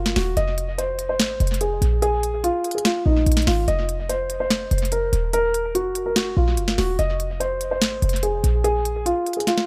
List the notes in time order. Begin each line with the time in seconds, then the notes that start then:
Already playing: F#1 F4
0.06 snare
0.16 D#1 F#4, snare, open hi-hat
0.37 F1 D#5, closed hi-hat
0.58 closed hi-hat
0.78 C5, closed hi-hat
0.99 closed hi-hat
1.09 C5
1.20 G#1, snare, closed hi-hat
1.40 F1, closed hi-hat
1.47 closed hi-hat
1.54 closed hi-hat
1.61 G#4, closed hi-hat
1.82 A#1, closed hi-hat
2.02 G#4, closed hi-hat
2.23 closed hi-hat
2.44 F4, closed hi-hat
2.64 closed hi-hat
2.71 G#4, closed hi-hat
2.78 closed hi-hat
2.85 F4, snare, closed hi-hat
3.06 A#1 D#4
3.26 A#1, closed hi-hat
3.32 closed hi-hat
3.37 snare, closed hi-hat
3.42 closed hi-hat
3.47 G#1 F4, snare, open hi-hat
3.68 F1 D#5, closed hi-hat
3.89 closed hi-hat
4.09 C5, closed hi-hat
4.30 closed hi-hat
4.40 C5
4.50 snare, closed hi-hat
4.71 F1, closed hi-hat
4.78 closed hi-hat
4.85 closed hi-hat
4.92 A#4, closed hi-hat
5.13 D#1, closed hi-hat
5.33 A#4, closed hi-hat
5.54 closed hi-hat
5.75 F1 F#4, closed hi-hat
5.95 closed hi-hat
6.06 A#4
6.16 F#4, snare, closed hi-hat
6.37 A#1 F4
6.57 F#1, closed hi-hat
6.68 snare
6.78 D#1 F#4, snare, open hi-hat
6.99 F1 D#5, closed hi-hat
7.20 closed hi-hat
7.40 C5, closed hi-hat
7.61 closed hi-hat
7.71 C5
7.82 G#1, snare, closed hi-hat
8.02 F1, closed hi-hat
8.09 closed hi-hat
8.16 closed hi-hat
8.23 G#4, closed hi-hat
8.44 A#1, closed hi-hat
8.64 G#4, closed hi-hat
8.85 closed hi-hat
9.06 F4, closed hi-hat
9.26 closed hi-hat
9.33 G#4, closed hi-hat
9.40 closed hi-hat
9.47 F4, snare, closed hi-hat
9.58 snare